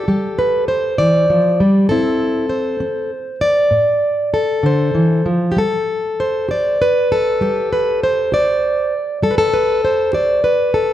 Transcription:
0.00 0.98 A4 medium
0.08 0.63 G3 medium
0.08 1.87 G4 soft
0.39 0.68 B4 medium
0.68 1.60 C5 medium
0.98 1.29 E3 medium
0.98 1.89 D5 medium
1.30 1.60 F3 medium
1.60 1.90 G3 medium
1.89 2.44 A2 medium
1.89 2.80 C4 medium
1.89 2.49 E4 medium
1.89 3.10 A4 loud
2.49 3.72 C5 medium
2.80 3.35 C4 medium
3.41 4.33 D5 loud
3.71 4.27 A2 medium
4.34 5.27 A4 medium
4.63 4.94 D3 medium
4.63 5.58 C5 medium
4.95 5.25 E3 medium
5.26 5.57 F3 medium
5.52 5.58 G4 medium
5.57 6.13 G3 medium
5.57 6.50 A4 loud
6.20 6.81 C5 medium
6.49 7.05 G4 medium
6.49 7.11 D5 medium
6.82 7.71 B4 loud
7.12 8.33 A4 medium
7.41 7.96 G3 medium
7.41 8.32 G4 medium
7.73 8.03 B4 medium
8.03 8.93 C5 medium
8.32 8.86 G4 medium
8.32 9.23 D5 loud
9.22 9.77 G3 medium
9.22 9.37 A4 loud
9.31 9.52 B4 medium
9.38 10.14 A4 loud
9.54 9.84 B4 loud
9.85 10.44 C5 medium
10.13 10.68 G4 medium
10.13 10.74 D5 medium
10.44 10.93 B4 medium
10.74 10.93 A4 medium

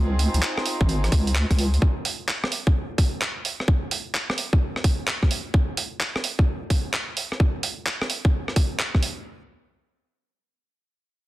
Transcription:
0.00 0.28 C#2 loud
0.00 1.80 C4 medium
0.00 1.80 D#4 medium
0.00 1.78 F4 medium
0.00 1.78 G#4 medium
0.19 open hi-hat loud
0.34 0.40 C#2 medium
0.34 closed hi-hat medium
0.42 clap loud
0.58 cross-stick medium
0.66 open hi-hat loud
0.81 1.09 G#1 medium
0.81 kick loud
0.89 closed hi-hat medium
1.04 cross-stick soft
1.04 closed hi-hat soft
1.12 1.45 C#2 medium
1.12 kick loud
1.12 open hi-hat loud
1.27 closed hi-hat medium
1.35 clap loud
1.51 1.79 C#2 medium
1.51 kick medium
1.51 cross-stick soft
1.51 closed hi-hat medium
1.59 open hi-hat medium
1.74 closed hi-hat soft
1.82 kick loud
2.05 open hi-hat medium
2.28 clap loud
2.44 cross-stick medium
2.52 open hi-hat loud
2.67 kick loud
2.98 kick loud
2.98 open hi-hat loud
3.22 clap loud
3.45 open hi-hat medium
3.60 cross-stick soft
3.68 kick loud
3.91 open hi-hat loud
4.15 clap loud
4.30 cross-stick medium
4.38 open hi-hat loud
4.53 kick medium
4.76 cross-stick soft
4.84 kick medium
4.84 open hi-hat loud
5.07 clap loud
5.23 kick medium
5.23 cross-stick soft
5.31 open hi-hat loud
5.54 kick loud
5.77 open hi-hat loud
6.00 clap loud
6.16 cross-stick medium
6.24 open hi-hat loud
6.39 kick medium
6.70 kick loud
6.70 open hi-hat loud
6.94 clap loud
7.17 open hi-hat loud
7.32 cross-stick soft
7.40 kick loud
7.63 open hi-hat loud
7.86 clap loud
8.02 cross-stick medium
8.10 open hi-hat loud
8.25 kick medium
8.48 cross-stick soft
8.56 kick medium
8.56 open hi-hat loud
8.79 clap loud
8.95 kick medium
8.95 cross-stick soft
9.03 open hi-hat loud

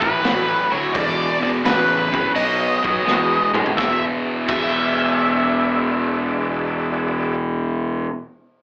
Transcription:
0.00 0.16 A1 medium
0.00 0.21 A2 medium
0.00 0.21 E3 medium
0.00 0.92 E4 medium
0.00 0.92 A4 medium
0.00 0.74 B4 medium
0.00 0.92 C#5 medium
0.00 0.92 G5 medium
0.00 kick medium
0.23 0.54 A1 medium
0.23 0.66 A2 medium
0.23 0.67 F#3 medium
0.23 snare loud
0.23 open hi-hat soft
0.70 0.87 D2 medium
0.70 0.91 A2 medium
0.70 0.92 F#3 medium
0.70 0.94 C#5 medium
0.93 1.25 E1 medium
0.93 1.37 E2 medium
0.93 1.37 B2 medium
0.93 1.18 F4 medium
0.93 1.18 A4 medium
0.93 1.18 C5 medium
0.93 1.39 D5 loud
0.93 1.18 D#5 medium
0.93 kick loud
0.93 open hi-hat medium
1.18 2.35 E4 medium
1.18 2.35 G#4 medium
1.18 2.32 B4 medium
1.18 2.35 D5 medium
1.41 1.57 E1 medium
1.41 1.62 E2 medium
1.41 1.62 B2 medium
1.41 1.49 D5 medium
1.63 2.10 A1 medium
1.63 2.07 E2 medium
1.63 2.08 C#3 medium
1.63 2.32 B4 medium
1.63 snare loud
1.63 open hi-hat medium
2.12 2.33 E2 medium
2.12 2.33 C#3 medium
2.12 kick medium
2.33 2.66 B1 medium
2.33 2.78 B2 medium
2.33 2.78 F#3 medium
2.33 3.74 F#4 medium
2.33 3.74 B4 medium
2.33 3.74 D#5 medium
2.33 3.50 D#5 medium
2.33 3.74 A5 medium
2.33 open hi-hat medium
2.83 2.98 B1 medium
2.83 3.04 B2 medium
2.83 3.04 F#3 medium
2.83 kick medium
3.06 3.37 E2 medium
3.06 3.49 B2 medium
3.06 3.49 G#3 medium
3.06 snare medium
3.53 3.68 A2 medium
3.53 3.74 B2 medium
3.53 3.75 G#3 medium
3.53 mid tom medium
3.66 floor tom medium
3.76 4.04 E1 medium
3.76 4.46 E2 loud
3.76 4.48 B2 loud
3.76 4.00 G4 medium
3.76 4.00 A4 medium
3.76 4.00 D#5 medium
3.76 4.04 E5 medium
3.76 4.00 F5 medium
3.76 kick loud
3.76 snare medium
3.80 4.50 E3 loud
4.00 7.35 F#4 medium
4.00 7.35 G#4 medium
4.00 7.36 D5 medium
4.00 7.36 E5 medium
4.46 8.06 E1 medium
4.46 8.08 E2 medium
4.46 8.10 B2 loud
4.46 7.36 E5 medium
4.46 kick loud
4.46 crash medium
4.50 8.11 E3 loud

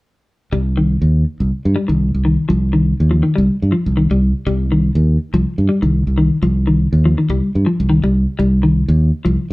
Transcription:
0.52 0.95 C2 medium
0.52 0.72 G3 medium
0.77 0.96 D#3 medium
1.02 1.23 D#2 medium
1.40 1.50 C2 medium
1.65 1.75 G2 medium
1.76 1.86 G3 medium
1.88 2.11 C2 medium
1.88 2.08 D#3 medium
2.15 2.36 C2 medium
2.25 2.44 D#3 medium
2.49 2.92 C2 medium
2.49 2.68 F3 medium
2.73 2.92 D#3 medium
3.00 3.21 D#2 medium
3.11 3.20 F3 medium
3.23 3.33 D#3 medium
3.36 3.47 C2 medium
3.36 3.55 G3 medium
3.62 3.72 G2 medium
3.72 3.91 F3 medium
3.86 4.07 C2 medium
3.97 4.07 D#3 medium
4.11 4.32 C2 medium
4.11 4.30 G3 medium
4.46 4.89 C2 medium
4.46 4.65 G3 medium
4.72 4.90 D#3 medium
4.95 5.17 D#2 medium
5.34 5.43 C2 medium
5.34 5.53 F3 medium
5.58 5.68 G2 medium
5.69 5.79 G3 medium
5.82 6.04 C2 medium
5.82 6.01 D#3 medium
6.07 6.28 C2 medium
6.18 6.37 D#3 medium
6.42 6.85 C2 medium
6.42 6.62 F3 medium
6.67 6.86 D#3 medium
6.93 7.14 D#2 medium
7.05 7.14 F3 medium
7.18 7.28 D#3 medium
7.29 7.40 C2 medium
7.29 7.49 G3 medium
7.55 7.65 G2 medium
7.66 7.85 F3 medium
7.80 8.01 C2 medium
7.90 8.00 D#3 medium
8.03 8.25 C2 medium
8.03 8.23 G3 medium
8.39 8.82 C2 medium
8.39 8.58 G3 medium
8.63 8.83 D#3 medium
8.88 9.10 D#2 medium
9.25 9.36 C2 medium
9.25 9.45 F3 medium

